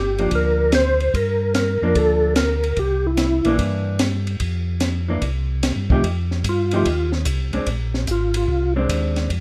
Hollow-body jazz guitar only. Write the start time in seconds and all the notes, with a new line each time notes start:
0.19 F3 A#3 D4
1.83 F3 A#3 D4
3.45 E3 A#3 D4
5.08 E3 A#3 D4
5.90 F3 A3 D#4 G4
6.73 F3 A3 D#4 G4
7.53 G#3 C4 D4
8.76 G#3 C4 D4